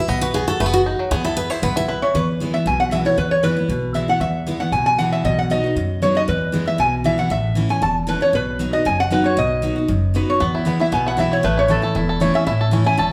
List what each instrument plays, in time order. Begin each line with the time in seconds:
0.08 upright bass B1, five-string banjo B3, steel-string acoustic guitar D#5
0.21 five-string banjo F#4, steel-string acoustic guitar B4
0.34 five-string banjo B3, steel-string acoustic guitar G#4
0.48 five-string banjo F#4, steel-string acoustic guitar A4
0.60 upright bass F#1, five-string banjo A3, steel-string acoustic guitar B4
0.66 five-string banjo B3
0.73 steel-string acoustic guitar F#4, five-string banjo F#4
0.86 five-string banjo D#4
0.99 five-string banjo F#3
1.11 upright bass E2, five-string banjo B3, steel-string acoustic guitar G#4
1.25 five-string banjo E4, steel-string acoustic guitar A4
1.37 five-string banjo B3, steel-string acoustic guitar B4
1.50 five-string banjo E4, steel-string acoustic guitar C5
1.62 upright bass B1, five-string banjo B3, steel-string acoustic guitar B4
1.76 five-string banjo E4, steel-string acoustic guitar E5
1.88 five-string banjo E4, resonator guitar played with a steel bar B4
2.02 five-string banjo E3, resonator guitar played with a steel bar C#5
2.14 upright bass E2, steel-string acoustic guitar E2, resonator guitar played with a steel bar B4
2.40 steel-string acoustic guitar E3 G#3 B3 E4
2.54 steel-string acoustic guitar B3 E4, resonator guitar played with a steel bar E5
2.66 upright bass B1, steel-string acoustic guitar B2, resonator guitar played with a steel bar G#5
2.80 resonator guitar played with a steel bar F#5
2.91 steel-string acoustic guitar E3 G#3 B3 E4, resonator guitar played with a steel bar E5
3.05 steel-string acoustic guitar B3 E4, resonator guitar played with a steel bar C#5
3.17 upright bass E2, steel-string acoustic guitar E2, resonator guitar played with a steel bar B4
3.31 resonator guitar played with a steel bar C#5
3.43 steel-string acoustic guitar E3 G#3 B3 E4, resonator guitar played with a steel bar B4
3.57 steel-string acoustic guitar B3 E4
3.69 upright bass B1, steel-string acoustic guitar B2
3.94 steel-string acoustic guitar E3 G#3 B3 E4, resonator guitar played with a steel bar E5
4.08 steel-string acoustic guitar B3 E4, resonator guitar played with a steel bar F#5
4.20 upright bass E2, steel-string acoustic guitar E2, resonator guitar played with a steel bar E5
4.47 steel-string acoustic guitar E3 G#3 B3 E4
4.60 steel-string acoustic guitar B3 E4, resonator guitar played with a steel bar F#5
4.72 upright bass B1, steel-string acoustic guitar B2, resonator guitar played with a steel bar G#5
4.86 resonator guitar played with a steel bar G#5
4.98 steel-string acoustic guitar E3 G#3 B3 E4, resonator guitar played with a steel bar F#5
5.12 resonator guitar played with a steel bar E5
5.24 upright bass B1, steel-string acoustic guitar B2, resonator guitar played with a steel bar D#5
5.39 resonator guitar played with a steel bar F#5
5.50 steel-string acoustic guitar F#3 B3 D#4 F#4, resonator guitar played with a steel bar D#5
5.64 steel-string acoustic guitar D#4 F#4
5.76 upright bass F#2, steel-string acoustic guitar F#2
6.02 steel-string acoustic guitar F#3 B3 D#4 F#4, resonator guitar played with a steel bar C#5
6.15 steel-string acoustic guitar D#4 F#4, resonator guitar played with a steel bar D#5
6.28 upright bass E2, steel-string acoustic guitar E2, resonator guitar played with a steel bar B4
6.52 steel-string acoustic guitar E3 G#3 B3 E4
6.66 steel-string acoustic guitar B3 E4, resonator guitar played with a steel bar E5
6.78 upright bass B1, steel-string acoustic guitar B2, resonator guitar played with a steel bar G#5
7.04 steel-string acoustic guitar E3 G#3 B3 E4, resonator guitar played with a steel bar E5
7.18 steel-string acoustic guitar B3 E4, resonator guitar played with a steel bar F#5
7.30 upright bass A1, steel-string acoustic guitar A2, resonator guitar played with a steel bar E5
7.55 steel-string acoustic guitar E3 A3 C#4 E4
7.69 steel-string acoustic guitar C#4 E4, resonator guitar played with a steel bar G#5
7.82 upright bass E1, steel-string acoustic guitar E2, resonator guitar played with a steel bar A5
8.07 steel-string acoustic guitar E3 A3 C#4 E4, resonator guitar played with a steel bar B4
8.21 steel-string acoustic guitar C#4 E4, resonator guitar played with a steel bar C#5
8.33 upright bass B1, steel-string acoustic guitar B2, resonator guitar played with a steel bar B4
8.59 steel-string acoustic guitar F#3 B3 D#4 F#4
8.73 steel-string acoustic guitar D#4 F#4, resonator guitar played with a steel bar D#5
8.85 upright bass F#1, steel-string acoustic guitar F#2, resonator guitar played with a steel bar G#5
9.00 resonator guitar played with a steel bar F#5
9.10 steel-string acoustic guitar F#3 B3 D#4 F#4, resonator guitar played with a steel bar B4
9.24 steel-string acoustic guitar D#4 F#4, resonator guitar played with a steel bar C#5
9.37 upright bass B1, steel-string acoustic guitar B2, resonator guitar played with a steel bar D#5
9.62 steel-string acoustic guitar F#3 B3 D#4 F#4
9.76 steel-string acoustic guitar D#4 F#4
9.88 upright bass F#1, steel-string acoustic guitar F#2
10.14 steel-string acoustic guitar F#3 B3 D#4 F#4, resonator guitar played with a steel bar B4
10.30 resonator guitar played with a steel bar C#5
10.40 steel-string acoustic guitar E2, upright bass E2, five-string banjo B3, resonator guitar played with a steel bar B4
10.55 five-string banjo E4
10.65 steel-string acoustic guitar E3 G#3 B3 E4, five-string banjo B3
10.79 steel-string acoustic guitar B3 E4, five-string banjo E4, resonator guitar played with a steel bar E5
10.92 upright bass B1, steel-string acoustic guitar B2, five-string banjo B3, resonator guitar played with a steel bar G#5
11.06 five-string banjo E4, resonator guitar played with a steel bar F#5
11.17 steel-string acoustic guitar E3 G#3 B3 E4, five-string banjo E4, resonator guitar played with a steel bar E5
11.32 five-string banjo E4, resonator guitar played with a steel bar C#5
11.43 upright bass A1, steel-string acoustic guitar A2, five-string banjo A3, resonator guitar played with a steel bar B4
11.57 five-string banjo E4, resonator guitar played with a steel bar C#5
11.68 steel-string acoustic guitar E3 A3 C#4 E4, five-string banjo A3, resonator guitar played with a steel bar A4
11.82 steel-string acoustic guitar C#4 E4, five-string banjo A4
11.95 upright bass E1, steel-string acoustic guitar E2, five-string banjo E4
12.09 five-string banjo A4
12.20 steel-string acoustic guitar E3 A3 C#4 E4, five-string banjo E4, resonator guitar played with a steel bar C#5
12.34 five-string banjo C#4, steel-string acoustic guitar C#4 E4, resonator guitar played with a steel bar E5
12.46 upright bass A1, steel-string acoustic guitar A2, five-string banjo E4, resonator guitar played with a steel bar E5
12.61 five-string banjo A4
12.71 steel-string acoustic guitar E3 A3 C#4 E4, five-string banjo C#4
12.84 steel-string acoustic guitar C#4 E4, five-string banjo E4, resonator guitar played with a steel bar G#5
12.97 upright bass E1, steel-string acoustic guitar E2, five-string banjo A4, resonator guitar played with a steel bar A5